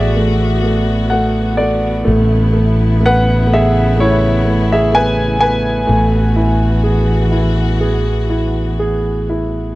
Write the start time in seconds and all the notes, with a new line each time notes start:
Already playing: A1 E3 A3 B3 F#4 G#4 D5 E5
0.16 A3
0.63 A3
1.10 A3 F#5
1.57 A3 D5
2.05 A1 C#3 A3 E4
2.53 A3
3.00 A3
3.06 B4 F#5
3.47 A3
3.54 G#4 E5
3.96 A3
4.00 E4 C#5
4.45 A3
4.72 G#4 E5
4.91 A3 G#5
4.95 B4
5.40 A3 B4 G#5
5.87 A1 E3 A3 F#4
6.36 E4
6.84 G#4
7.32 E4
7.81 G#4
8.30 E4
8.79 G#4
9.30 E4